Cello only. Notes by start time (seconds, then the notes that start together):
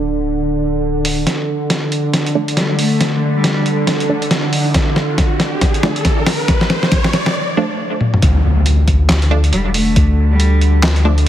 2.57 G3
2.70 G3
2.79 A3
3.35 G3
9.53 G3
9.66 G3
9.75 A3
10.31 G3